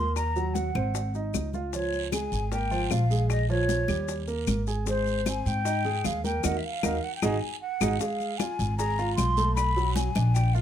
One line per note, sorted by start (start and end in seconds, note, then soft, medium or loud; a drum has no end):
0.00 0.69 D#2 medium
0.00 0.29 A#3 medium
0.00 0.29 A#4 medium
0.00 0.15 C6 loud
0.16 0.55 A#5 medium
0.16 high bongo medium
0.16 high conga soft
0.16 claves medium
0.16 maracas medium
0.36 0.68 F#3 medium
0.36 0.68 F#4 medium
0.36 high conga soft
0.36 maracas soft
0.54 1.14 F#5 medium
0.54 high bongo medium
0.54 high conga medium
0.54 maracas medium
0.75 1.30 G#1 medium
0.75 1.07 C4 medium
0.75 1.08 C5 medium
0.75 high bongo soft
0.75 high conga medium
0.75 claves medium
0.75 maracas soft
0.95 high bongo medium
0.95 high conga soft
0.95 maracas medium
1.14 1.47 D#4 medium
1.14 1.47 D#5 medium
1.14 high bongo soft
1.14 high conga soft
1.14 maracas soft
1.34 2.26 C#2 medium
1.34 high bongo soft
1.34 low bongo medium
1.34 high conga medium
1.34 claves medium
1.34 maracas medium
1.54 1.70 F4 medium
1.54 1.71 F5 medium
1.54 high bongo soft
1.54 high conga medium
1.54 maracas soft
1.73 2.06 F3 medium
1.73 2.06 F4 medium
1.73 2.10 C#5 medium
1.73 high bongo medium
1.73 high conga soft
1.73 long guiro medium
1.73 maracas medium
1.93 high conga soft
1.93 maracas soft
2.12 2.45 G#3 medium
2.12 2.45 G#4 medium
2.12 2.49 G#5 medium
2.12 high bongo medium
2.12 high conga medium
2.12 short guiro medium
2.12 claves medium
2.12 maracas medium
2.32 2.87 G#1 medium
2.32 high bongo soft
2.32 high conga soft
2.32 short guiro medium
2.32 maracas soft
2.52 2.68 A#3 medium
2.52 2.68 A#4 medium
2.52 2.92 G5 medium
2.52 high bongo medium
2.52 high conga soft
2.52 long guiro medium
2.52 maracas medium
2.71 3.03 F3 medium
2.71 3.03 F4 medium
2.71 high bongo soft
2.71 high conga soft
2.71 maracas soft
2.91 3.83 A#1 medium
2.91 3.29 F5 medium
2.91 high bongo soft
2.91 low bongo medium
2.91 high conga medium
2.91 short guiro medium
2.91 claves medium
2.91 maracas medium
3.10 3.43 G#3 medium
3.10 3.43 G#4 medium
3.10 high bongo soft
3.10 short guiro medium
3.10 maracas soft
3.29 3.48 D#5 medium
3.29 high bongo medium
3.29 high conga soft
3.29 long guiro medium
3.29 claves medium
3.29 maracas medium
3.49 3.82 F3 medium
3.49 3.82 F4 medium
3.49 4.24 C#5 medium
3.49 high conga soft
3.49 maracas soft
3.69 high bongo medium
3.69 high conga medium
3.69 short guiro medium
3.69 maracas medium
3.88 4.44 D#2 medium
3.88 4.21 G3 medium
3.88 4.21 G4 medium
3.88 high bongo soft
3.88 high conga medium
3.88 short guiro medium
3.88 claves medium
3.88 maracas soft
4.08 high bongo medium
4.08 high conga soft
4.08 long guiro medium
4.08 maracas medium
4.28 4.60 A#3 medium
4.28 4.60 A#4 medium
4.28 high bongo soft
4.28 high conga soft
4.28 maracas soft
4.47 5.39 G#1 medium
4.47 high bongo soft
4.47 low bongo medium
4.47 high conga medium
4.47 short guiro medium
4.47 claves medium
4.47 maracas medium
4.67 4.83 G#4 medium
4.67 4.84 G#5 medium
4.67 high bongo soft
4.67 short guiro medium
4.67 maracas soft
4.86 5.19 G#3 medium
4.86 5.19 G#4 medium
4.86 5.29 C5 medium
4.86 high bongo medium
4.86 high conga soft
4.86 long guiro medium
4.86 maracas medium
5.06 high conga soft
5.06 maracas soft
5.26 5.58 C4 medium
5.26 5.58 C5 medium
5.26 5.48 G#5 loud
5.26 high bongo medium
5.26 high conga loud
5.26 short guiro medium
5.26 claves medium
5.26 maracas medium
5.46 6.01 G#2 medium
5.46 6.06 G5 loud
5.46 high bongo soft
5.46 high conga soft
5.46 short guiro medium
5.46 maracas soft
5.65 5.81 D#4 medium
5.65 5.81 D#5 medium
5.65 high bongo medium
5.65 high conga soft
5.65 long guiro medium
5.65 maracas medium
5.85 6.17 G#3 medium
5.85 6.17 G#4 medium
5.85 high bongo soft
5.85 high conga soft
5.85 maracas soft
6.04 6.41 D#2 medium
6.04 6.24 F5 loud
6.04 high bongo soft
6.04 low bongo medium
6.04 high conga medium
6.04 short guiro medium
6.04 claves medium
6.04 maracas medium
6.24 6.40 A#3 medium
6.24 6.40 A#4 medium
6.24 6.46 G5 medium
6.24 high bongo soft
6.24 high conga medium
6.24 short guiro medium
6.24 maracas soft
6.44 6.59 D#2 loud
6.44 6.56 D#4 medium
6.44 6.56 F#4 medium
6.44 6.56 A#4 medium
6.44 6.59 F#5 medium
6.44 high bongo medium
6.44 high conga medium
6.44 long guiro medium
6.44 claves medium
6.44 maracas medium
6.57 6.66 E5 medium
6.64 7.04 F5 medium
6.83 6.98 D#2 medium
6.83 6.96 D#4 medium
6.83 6.96 F#4 medium
6.83 6.96 A#4 medium
6.83 high bongo medium
6.83 high conga loud
6.83 claves medium
6.83 maracas medium
7.03 7.15 F#5 medium
7.15 7.24 G5 medium
7.22 7.37 G#1 medium
7.22 7.35 D#4 loud
7.22 7.35 F#4 loud
7.22 7.35 G#4 loud
7.22 7.60 G#5 medium
7.22 high bongo medium
7.22 high conga medium
7.22 claves medium
7.22 maracas medium
7.61 8.01 F#5 loud
7.81 7.96 G#1 medium
7.81 7.94 D#4 medium
7.81 7.94 F#4 medium
7.81 7.94 G#4 medium
7.81 high bongo medium
7.81 high conga medium
7.81 long guiro medium
7.81 claves loud
7.81 maracas medium
7.99 8.33 G#3 medium
7.99 8.33 G#4 medium
7.99 8.39 F5 loud
7.99 high bongo medium
7.99 long guiro medium
7.99 maracas medium
8.20 high conga soft
8.20 maracas soft
8.38 8.72 F4 medium
8.38 8.72 F5 medium
8.38 8.77 G#5 medium
8.38 high bongo medium
8.38 high conga loud
8.38 short guiro medium
8.38 claves medium
8.38 maracas medium
8.59 9.14 G#1 medium
8.59 high bongo soft
8.59 high conga soft
8.59 short guiro medium
8.59 maracas soft
8.77 8.95 G#4 medium
8.77 8.95 G#5 medium
8.77 9.15 A#5 loud
8.77 high bongo medium
8.77 high conga soft
8.77 long guiro medium
8.77 maracas medium
8.98 9.31 F4 medium
8.98 9.31 F5 medium
8.98 high bongo soft
8.98 high conga soft
8.98 maracas soft
9.16 10.10 B1 medium
9.16 9.53 C6 loud
9.16 high bongo soft
9.16 low bongo medium
9.16 high conga medium
9.16 short guiro medium
9.16 claves medium
9.16 maracas medium
9.37 9.70 A3 medium
9.37 9.70 A4 medium
9.37 high bongo soft
9.37 high conga medium
9.37 short guiro medium
9.37 maracas soft
9.55 9.92 B5 loud
9.55 high bongo medium
9.55 high conga soft
9.55 long guiro medium
9.55 claves medium
9.55 maracas medium
9.76 10.09 F#3 medium
9.76 10.09 F#4 medium
9.76 high conga soft
9.76 maracas soft
9.95 10.35 G#5 medium
9.95 high bongo medium
9.95 high conga loud
9.95 short guiro medium
9.95 maracas medium
10.15 10.62 A#1 medium
10.15 10.48 D4 medium
10.15 10.48 D5 medium
10.15 high bongo soft
10.15 high conga loud
10.15 short guiro medium
10.15 claves medium
10.15 maracas soft
10.34 10.55 G5 loud
10.34 high bongo medium
10.34 high conga soft
10.34 long guiro medium
10.34 maracas medium
10.54 10.62 F4 medium
10.54 10.62 F5 medium
10.54 high bongo soft
10.54 high conga soft
10.54 maracas soft